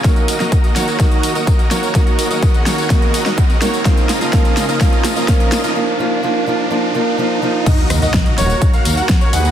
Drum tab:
CC |----------------|----------------|----------------|----------------|
HH |xxoxxxoxxxoxxxox|xxoxxxoxxxoxxxox|xxoxxxoxxxoxxxox|----------------|
TB |xxxxxxxxxxxxxxxx|xxxxxxxxxxxxxxxx|xxxxxxxxxxxxxxxx|----------------|
SD |o--o--o-o-----o-|o-----o-o--o--o-|o-o-o-o-o-o-o-o-|----------------|
BD |o---o---o---o---|o---o---o---o---|o---o---o---o---|----------------|

CC |x---------------|
HH |xxoxxxoxxxoxxxox|
TB |xxxxxxxxxxxxxxxx|
SD |--r-o-o-----o---|
BD |o---o---o---o---|